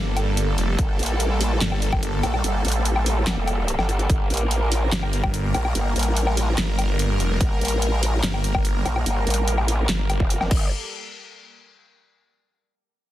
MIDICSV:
0, 0, Header, 1, 5, 480
1, 0, Start_track
1, 0, Key_signature, -2, "minor"
1, 0, Tempo, 413793
1, 912, Time_signature, 4, 2, 24, 8
1, 15212, End_track
2, 0, Start_track
2, 0, Title_t, "Supersaw synth"
2, 0, Program_c, 0, 81
2, 0, Note_on_c, 0, 55, 83
2, 0, Note_on_c, 0, 58, 77
2, 0, Note_on_c, 0, 69, 95
2, 4729, Note_off_c, 0, 69, 0
2, 4750, Note_on_c, 0, 70, 94
2, 12144, Note_off_c, 0, 70, 0
2, 12145, Note_off_c, 0, 55, 0
2, 12145, Note_off_c, 0, 58, 0
2, 12192, Note_on_c, 0, 55, 74
2, 12192, Note_on_c, 0, 58, 67
2, 12192, Note_on_c, 0, 69, 79
2, 12415, Note_off_c, 0, 55, 0
2, 12415, Note_off_c, 0, 58, 0
2, 12415, Note_off_c, 0, 69, 0
2, 15212, End_track
3, 0, Start_track
3, 0, Title_t, "Detuned saw bass"
3, 0, Program_c, 1, 39
3, 0, Note_on_c, 1, 31, 97
3, 653, Note_off_c, 1, 31, 0
3, 672, Note_on_c, 1, 29, 99
3, 893, Note_off_c, 1, 29, 0
3, 1872, Note_on_c, 1, 31, 95
3, 2573, Note_off_c, 1, 31, 0
3, 5711, Note_on_c, 1, 31, 94
3, 6412, Note_off_c, 1, 31, 0
3, 7631, Note_on_c, 1, 31, 95
3, 8332, Note_off_c, 1, 31, 0
3, 8351, Note_on_c, 1, 29, 100
3, 8573, Note_off_c, 1, 29, 0
3, 9552, Note_on_c, 1, 31, 98
3, 10253, Note_off_c, 1, 31, 0
3, 11472, Note_on_c, 1, 31, 96
3, 11814, Note_off_c, 1, 31, 0
3, 15212, End_track
4, 0, Start_track
4, 0, Title_t, "Wobble bass"
4, 0, Program_c, 2, 39
4, 912, Note_on_c, 2, 31, 97
4, 1133, Note_off_c, 2, 31, 0
4, 1152, Note_on_c, 2, 33, 100
4, 1853, Note_off_c, 2, 33, 0
4, 2591, Note_on_c, 2, 34, 102
4, 2812, Note_off_c, 2, 34, 0
4, 2831, Note_on_c, 2, 31, 95
4, 3052, Note_off_c, 2, 31, 0
4, 3071, Note_on_c, 2, 33, 100
4, 3772, Note_off_c, 2, 33, 0
4, 3790, Note_on_c, 2, 31, 102
4, 3893, Note_off_c, 2, 31, 0
4, 3912, Note_on_c, 2, 29, 96
4, 4373, Note_off_c, 2, 29, 0
4, 4391, Note_on_c, 2, 31, 97
4, 4732, Note_off_c, 2, 31, 0
4, 4751, Note_on_c, 2, 31, 97
4, 4972, Note_off_c, 2, 31, 0
4, 4991, Note_on_c, 2, 33, 100
4, 5692, Note_off_c, 2, 33, 0
4, 6432, Note_on_c, 2, 34, 102
4, 6653, Note_off_c, 2, 34, 0
4, 6672, Note_on_c, 2, 31, 97
4, 6893, Note_off_c, 2, 31, 0
4, 6911, Note_on_c, 2, 33, 98
4, 7612, Note_off_c, 2, 33, 0
4, 8591, Note_on_c, 2, 31, 98
4, 8812, Note_off_c, 2, 31, 0
4, 8831, Note_on_c, 2, 33, 101
4, 9532, Note_off_c, 2, 33, 0
4, 10272, Note_on_c, 2, 34, 100
4, 10493, Note_off_c, 2, 34, 0
4, 10512, Note_on_c, 2, 31, 95
4, 10733, Note_off_c, 2, 31, 0
4, 10752, Note_on_c, 2, 33, 101
4, 11453, Note_off_c, 2, 33, 0
4, 11833, Note_on_c, 2, 29, 99
4, 12185, Note_off_c, 2, 29, 0
4, 12191, Note_on_c, 2, 31, 101
4, 12415, Note_off_c, 2, 31, 0
4, 15212, End_track
5, 0, Start_track
5, 0, Title_t, "Drums"
5, 192, Note_on_c, 9, 42, 57
5, 192, Note_on_c, 9, 77, 57
5, 308, Note_off_c, 9, 42, 0
5, 308, Note_off_c, 9, 77, 0
5, 432, Note_on_c, 9, 42, 81
5, 548, Note_off_c, 9, 42, 0
5, 672, Note_on_c, 9, 42, 56
5, 788, Note_off_c, 9, 42, 0
5, 911, Note_on_c, 9, 36, 127
5, 912, Note_on_c, 9, 42, 79
5, 1027, Note_off_c, 9, 36, 0
5, 1028, Note_off_c, 9, 42, 0
5, 1151, Note_on_c, 9, 42, 49
5, 1192, Note_off_c, 9, 42, 0
5, 1192, Note_on_c, 9, 42, 63
5, 1231, Note_off_c, 9, 42, 0
5, 1231, Note_on_c, 9, 42, 80
5, 1347, Note_off_c, 9, 42, 0
5, 1391, Note_on_c, 9, 42, 80
5, 1507, Note_off_c, 9, 42, 0
5, 1631, Note_on_c, 9, 46, 92
5, 1747, Note_off_c, 9, 46, 0
5, 1871, Note_on_c, 9, 38, 125
5, 1871, Note_on_c, 9, 39, 91
5, 1871, Note_on_c, 9, 42, 80
5, 1987, Note_off_c, 9, 38, 0
5, 1987, Note_off_c, 9, 39, 0
5, 1987, Note_off_c, 9, 42, 0
5, 1993, Note_on_c, 9, 77, 56
5, 2109, Note_off_c, 9, 77, 0
5, 2112, Note_on_c, 9, 42, 55
5, 2228, Note_off_c, 9, 42, 0
5, 2233, Note_on_c, 9, 36, 65
5, 2233, Note_on_c, 9, 77, 85
5, 2349, Note_off_c, 9, 36, 0
5, 2349, Note_off_c, 9, 77, 0
5, 2352, Note_on_c, 9, 42, 76
5, 2468, Note_off_c, 9, 42, 0
5, 2591, Note_on_c, 9, 42, 51
5, 2591, Note_on_c, 9, 77, 62
5, 2707, Note_off_c, 9, 42, 0
5, 2707, Note_off_c, 9, 77, 0
5, 2713, Note_on_c, 9, 77, 54
5, 2829, Note_off_c, 9, 77, 0
5, 2831, Note_on_c, 9, 42, 76
5, 2947, Note_off_c, 9, 42, 0
5, 3071, Note_on_c, 9, 42, 46
5, 3112, Note_off_c, 9, 42, 0
5, 3112, Note_on_c, 9, 42, 63
5, 3151, Note_off_c, 9, 42, 0
5, 3151, Note_on_c, 9, 42, 79
5, 3267, Note_off_c, 9, 42, 0
5, 3311, Note_on_c, 9, 42, 77
5, 3427, Note_off_c, 9, 42, 0
5, 3433, Note_on_c, 9, 77, 59
5, 3549, Note_off_c, 9, 77, 0
5, 3551, Note_on_c, 9, 46, 90
5, 3667, Note_off_c, 9, 46, 0
5, 3791, Note_on_c, 9, 38, 123
5, 3791, Note_on_c, 9, 39, 92
5, 3791, Note_on_c, 9, 42, 79
5, 3907, Note_off_c, 9, 38, 0
5, 3907, Note_off_c, 9, 39, 0
5, 3907, Note_off_c, 9, 42, 0
5, 4031, Note_on_c, 9, 42, 53
5, 4031, Note_on_c, 9, 77, 59
5, 4147, Note_off_c, 9, 42, 0
5, 4147, Note_off_c, 9, 77, 0
5, 4271, Note_on_c, 9, 42, 78
5, 4387, Note_off_c, 9, 42, 0
5, 4393, Note_on_c, 9, 38, 39
5, 4393, Note_on_c, 9, 77, 66
5, 4509, Note_off_c, 9, 38, 0
5, 4509, Note_off_c, 9, 77, 0
5, 4511, Note_on_c, 9, 42, 51
5, 4627, Note_off_c, 9, 42, 0
5, 4633, Note_on_c, 9, 42, 35
5, 4749, Note_off_c, 9, 42, 0
5, 4751, Note_on_c, 9, 36, 121
5, 4751, Note_on_c, 9, 42, 77
5, 4867, Note_off_c, 9, 36, 0
5, 4867, Note_off_c, 9, 42, 0
5, 4991, Note_on_c, 9, 42, 46
5, 5031, Note_off_c, 9, 42, 0
5, 5031, Note_on_c, 9, 42, 63
5, 5071, Note_off_c, 9, 42, 0
5, 5071, Note_on_c, 9, 42, 77
5, 5187, Note_off_c, 9, 42, 0
5, 5231, Note_on_c, 9, 42, 78
5, 5347, Note_off_c, 9, 42, 0
5, 5471, Note_on_c, 9, 46, 96
5, 5587, Note_off_c, 9, 46, 0
5, 5711, Note_on_c, 9, 38, 122
5, 5711, Note_on_c, 9, 39, 86
5, 5711, Note_on_c, 9, 42, 76
5, 5827, Note_off_c, 9, 38, 0
5, 5827, Note_off_c, 9, 39, 0
5, 5827, Note_off_c, 9, 42, 0
5, 5833, Note_on_c, 9, 77, 56
5, 5949, Note_off_c, 9, 77, 0
5, 5951, Note_on_c, 9, 42, 55
5, 6067, Note_off_c, 9, 42, 0
5, 6073, Note_on_c, 9, 36, 64
5, 6073, Note_on_c, 9, 77, 84
5, 6189, Note_off_c, 9, 36, 0
5, 6189, Note_off_c, 9, 77, 0
5, 6191, Note_on_c, 9, 42, 75
5, 6307, Note_off_c, 9, 42, 0
5, 6431, Note_on_c, 9, 42, 52
5, 6431, Note_on_c, 9, 77, 66
5, 6547, Note_off_c, 9, 42, 0
5, 6547, Note_off_c, 9, 77, 0
5, 6553, Note_on_c, 9, 77, 57
5, 6669, Note_off_c, 9, 77, 0
5, 6672, Note_on_c, 9, 42, 81
5, 6788, Note_off_c, 9, 42, 0
5, 6912, Note_on_c, 9, 42, 48
5, 6952, Note_off_c, 9, 42, 0
5, 6952, Note_on_c, 9, 42, 66
5, 6992, Note_off_c, 9, 42, 0
5, 6992, Note_on_c, 9, 42, 81
5, 7108, Note_off_c, 9, 42, 0
5, 7152, Note_on_c, 9, 42, 82
5, 7268, Note_off_c, 9, 42, 0
5, 7273, Note_on_c, 9, 77, 56
5, 7389, Note_off_c, 9, 77, 0
5, 7392, Note_on_c, 9, 46, 101
5, 7508, Note_off_c, 9, 46, 0
5, 7632, Note_on_c, 9, 38, 118
5, 7632, Note_on_c, 9, 39, 87
5, 7632, Note_on_c, 9, 42, 79
5, 7748, Note_off_c, 9, 38, 0
5, 7748, Note_off_c, 9, 39, 0
5, 7748, Note_off_c, 9, 42, 0
5, 7872, Note_on_c, 9, 42, 56
5, 7872, Note_on_c, 9, 77, 58
5, 7988, Note_off_c, 9, 42, 0
5, 7988, Note_off_c, 9, 77, 0
5, 8112, Note_on_c, 9, 42, 80
5, 8228, Note_off_c, 9, 42, 0
5, 8352, Note_on_c, 9, 42, 53
5, 8468, Note_off_c, 9, 42, 0
5, 8591, Note_on_c, 9, 36, 118
5, 8592, Note_on_c, 9, 42, 81
5, 8707, Note_off_c, 9, 36, 0
5, 8708, Note_off_c, 9, 42, 0
5, 8832, Note_on_c, 9, 42, 52
5, 8873, Note_off_c, 9, 42, 0
5, 8873, Note_on_c, 9, 42, 68
5, 8913, Note_off_c, 9, 42, 0
5, 8913, Note_on_c, 9, 42, 84
5, 9029, Note_off_c, 9, 42, 0
5, 9072, Note_on_c, 9, 42, 85
5, 9188, Note_off_c, 9, 42, 0
5, 9312, Note_on_c, 9, 46, 102
5, 9428, Note_off_c, 9, 46, 0
5, 9552, Note_on_c, 9, 38, 112
5, 9552, Note_on_c, 9, 39, 88
5, 9552, Note_on_c, 9, 42, 82
5, 9668, Note_off_c, 9, 38, 0
5, 9668, Note_off_c, 9, 39, 0
5, 9668, Note_off_c, 9, 42, 0
5, 9674, Note_on_c, 9, 77, 52
5, 9790, Note_off_c, 9, 77, 0
5, 9792, Note_on_c, 9, 42, 59
5, 9908, Note_off_c, 9, 42, 0
5, 9913, Note_on_c, 9, 36, 59
5, 9913, Note_on_c, 9, 77, 78
5, 10029, Note_off_c, 9, 36, 0
5, 10029, Note_off_c, 9, 77, 0
5, 10032, Note_on_c, 9, 42, 82
5, 10148, Note_off_c, 9, 42, 0
5, 10272, Note_on_c, 9, 42, 55
5, 10272, Note_on_c, 9, 77, 60
5, 10388, Note_off_c, 9, 42, 0
5, 10388, Note_off_c, 9, 77, 0
5, 10394, Note_on_c, 9, 77, 53
5, 10510, Note_off_c, 9, 77, 0
5, 10511, Note_on_c, 9, 42, 83
5, 10627, Note_off_c, 9, 42, 0
5, 10752, Note_on_c, 9, 42, 53
5, 10792, Note_off_c, 9, 42, 0
5, 10792, Note_on_c, 9, 42, 69
5, 10832, Note_off_c, 9, 42, 0
5, 10832, Note_on_c, 9, 42, 84
5, 10948, Note_off_c, 9, 42, 0
5, 10992, Note_on_c, 9, 42, 86
5, 11108, Note_off_c, 9, 42, 0
5, 11114, Note_on_c, 9, 77, 54
5, 11230, Note_off_c, 9, 77, 0
5, 11232, Note_on_c, 9, 46, 99
5, 11348, Note_off_c, 9, 46, 0
5, 11472, Note_on_c, 9, 38, 118
5, 11472, Note_on_c, 9, 39, 89
5, 11472, Note_on_c, 9, 42, 87
5, 11588, Note_off_c, 9, 38, 0
5, 11588, Note_off_c, 9, 39, 0
5, 11588, Note_off_c, 9, 42, 0
5, 11712, Note_on_c, 9, 42, 59
5, 11712, Note_on_c, 9, 77, 54
5, 11828, Note_off_c, 9, 42, 0
5, 11828, Note_off_c, 9, 77, 0
5, 11833, Note_on_c, 9, 36, 61
5, 11949, Note_off_c, 9, 36, 0
5, 11951, Note_on_c, 9, 42, 85
5, 12067, Note_off_c, 9, 42, 0
5, 12074, Note_on_c, 9, 38, 37
5, 12074, Note_on_c, 9, 77, 60
5, 12190, Note_off_c, 9, 38, 0
5, 12190, Note_off_c, 9, 77, 0
5, 12191, Note_on_c, 9, 36, 113
5, 12192, Note_on_c, 9, 49, 89
5, 12307, Note_off_c, 9, 36, 0
5, 12308, Note_off_c, 9, 49, 0
5, 15212, End_track
0, 0, End_of_file